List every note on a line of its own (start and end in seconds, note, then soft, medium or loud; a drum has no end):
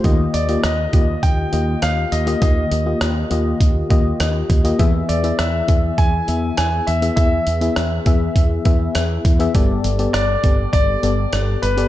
0.04 0.26 D#2 loud
0.04 0.89 D#3 medium
0.04 0.39 A#3 medium
0.04 0.39 F4 medium
0.04 0.39 G4 medium
0.04 0.39 D#5 medium
0.04 kick loud
0.04 closed hi-hat medium
0.34 0.55 D#2 medium
0.34 0.61 D5 medium
0.34 closed hi-hat medium
0.48 0.83 A#3 medium
0.48 0.84 F4 medium
0.48 0.84 G4 medium
0.48 0.84 D#5 medium
0.48 closed hi-hat soft
0.63 0.85 D#2 medium
0.63 1.25 D#5 medium
0.63 cross-stick medium
0.63 closed hi-hat medium
0.93 1.15 D#2 medium
0.93 1.40 A#3 medium
0.93 1.40 F4 medium
0.93 1.40 G4 medium
0.93 1.40 D#5 medium
0.93 kick medium
0.93 closed hi-hat medium
1.23 1.44 D#2 medium
1.23 1.78 G5 loud
1.23 kick medium
1.23 closed hi-hat medium
1.52 1.74 D#2 medium
1.52 2.11 A#3 medium
1.52 2.11 F4 medium
1.52 2.11 G4 medium
1.52 2.11 D#5 medium
1.52 closed hi-hat medium
1.82 2.04 D#2 medium
1.82 2.13 F5 medium
1.82 cross-stick medium
1.82 closed hi-hat medium
2.12 2.34 D#2 medium
2.12 2.40 D#5 medium
2.12 closed hi-hat medium
2.26 2.38 A#3 medium
2.26 2.39 F4 medium
2.26 2.39 G4 medium
2.26 2.39 D#5 medium
2.26 closed hi-hat soft
2.41 2.63 D#2 medium
2.41 3.27 D#3 medium
2.41 2.76 A#3 medium
2.41 2.76 F4 medium
2.41 2.77 G4 medium
2.41 4.46 D#5 medium
2.41 2.77 D#5 medium
2.41 kick loud
2.41 closed hi-hat medium
2.71 2.93 D#2 medium
2.71 closed hi-hat medium
2.86 3.21 A#3 medium
2.86 3.21 F4 medium
2.86 3.21 G4 medium
2.86 3.21 D#5 medium
3.01 3.23 D#2 medium
3.01 cross-stick loud
3.01 closed hi-hat medium
3.30 3.52 D#2 medium
3.30 3.77 A#3 medium
3.30 3.77 F4 medium
3.30 3.78 G4 medium
3.30 3.78 D#5 medium
3.30 closed hi-hat medium
3.60 3.82 D#2 medium
3.60 kick medium
3.60 closed hi-hat medium
3.90 4.12 D#2 medium
3.90 4.48 A#3 medium
3.90 4.48 F4 medium
3.90 4.48 G4 medium
3.90 4.49 D#5 medium
3.90 kick medium
3.90 closed hi-hat medium
4.20 4.41 D#2 medium
4.20 cross-stick medium
4.20 closed hi-hat medium
4.50 4.71 D#2 medium
4.50 kick medium
4.50 closed hi-hat medium
4.64 4.76 A#3 medium
4.64 4.76 F4 medium
4.64 4.76 G4 medium
4.64 4.77 D#5 medium
4.64 closed hi-hat medium
4.79 5.01 E2 medium
4.79 5.65 E3 medium
4.79 5.14 B3 medium
4.79 5.14 E4 medium
4.79 5.14 G#4 medium
4.79 5.15 E5 medium
4.79 kick loud
4.79 closed hi-hat medium
5.09 5.31 E2 medium
5.09 5.40 D5 medium
5.09 closed hi-hat medium
5.23 5.58 B3 medium
5.23 5.59 E4 medium
5.23 5.59 G#4 medium
5.23 5.59 E5 medium
5.23 closed hi-hat soft
5.39 5.60 E2 medium
5.39 6.00 E5 medium
5.39 cross-stick loud
5.39 closed hi-hat medium
5.68 5.90 E2 medium
5.68 6.15 B3 medium
5.68 6.15 E4 medium
5.68 6.15 G#4 medium
5.68 6.15 E5 medium
5.68 kick medium
5.68 closed hi-hat medium
5.98 6.20 E2 medium
5.98 6.56 G#5 medium
5.98 kick medium
5.98 closed hi-hat medium
6.28 6.49 E2 medium
6.28 6.86 B3 medium
6.28 6.86 E4 medium
6.28 6.86 G#4 medium
6.28 6.86 E5 medium
6.28 closed hi-hat medium
6.57 6.79 E2 medium
6.57 6.88 G#5 medium
6.57 cross-stick medium
6.57 closed hi-hat medium
6.87 7.09 E2 medium
6.87 7.15 E5 medium
6.87 closed hi-hat medium
7.02 7.13 B3 medium
7.02 7.14 E4 medium
7.02 7.14 G#4 medium
7.02 7.14 E5 medium
7.02 closed hi-hat medium
7.16 7.38 E2 medium
7.16 8.02 E3 medium
7.16 7.51 B3 medium
7.16 7.52 E4 medium
7.16 7.52 G#4 medium
7.16 9.21 E5 medium
7.16 7.52 E5 medium
7.16 kick loud
7.16 closed hi-hat medium
7.47 7.68 E2 medium
7.47 closed hi-hat medium
7.61 7.96 B3 medium
7.61 7.96 E4 medium
7.61 7.96 G#4 medium
7.61 7.97 E5 medium
7.61 closed hi-hat soft
7.76 7.98 E2 medium
7.76 cross-stick loud
7.76 closed hi-hat medium
8.06 8.28 E2 medium
8.06 8.52 B3 medium
8.06 8.53 E4 medium
8.06 8.53 G#4 medium
8.06 8.53 E5 medium
8.06 kick medium
8.06 closed hi-hat medium
8.36 8.57 E2 medium
8.36 kick medium
8.36 closed hi-hat medium
8.65 8.87 E2 medium
8.65 9.23 B3 medium
8.65 9.24 E4 medium
8.65 9.24 G#4 medium
8.65 9.24 E5 medium
8.65 kick medium
8.65 closed hi-hat medium
8.95 9.17 E2 medium
8.95 cross-stick medium
8.95 closed hi-hat medium
9.25 9.46 E2 medium
9.25 kick medium
9.25 closed hi-hat medium
9.39 9.51 B3 medium
9.39 9.51 E4 medium
9.39 9.52 G#4 medium
9.39 9.52 E5 medium
9.39 closed hi-hat soft
9.54 9.76 G1 medium
9.54 10.40 G2 medium
9.54 9.89 B3 medium
9.54 9.89 G4 medium
9.54 9.90 A4 medium
9.54 9.90 D5 medium
9.54 kick loud
9.54 closed hi-hat medium
9.84 10.06 G1 medium
9.84 closed hi-hat medium
9.99 10.34 B3 medium
9.99 10.34 G4 medium
9.99 10.34 A4 medium
9.99 10.34 D5 medium
9.99 closed hi-hat soft
10.13 10.35 G1 medium
10.13 10.71 D5 medium
10.13 cross-stick loud
10.13 closed hi-hat medium
10.43 10.65 G1 medium
10.43 10.90 B3 medium
10.43 10.90 G4 medium
10.43 10.90 A4 medium
10.43 10.91 D5 medium
10.43 kick medium
10.43 closed hi-hat medium
10.73 10.95 G1 medium
10.73 11.65 D5 medium
10.73 kick medium
10.73 closed hi-hat medium
11.03 11.25 G1 medium
11.03 11.61 B3 medium
11.03 11.61 G4 medium
11.03 11.61 A4 medium
11.03 11.62 D5 medium
11.03 closed hi-hat medium
11.33 11.54 G1 medium
11.33 cross-stick medium
11.33 closed hi-hat medium
11.62 11.84 G1 medium
11.62 11.88 B4 medium
11.62 closed hi-hat medium
11.77 11.88 B3 medium
11.77 11.88 G4 medium
11.77 11.88 A4 medium
11.77 11.88 D5 medium
11.77 closed hi-hat medium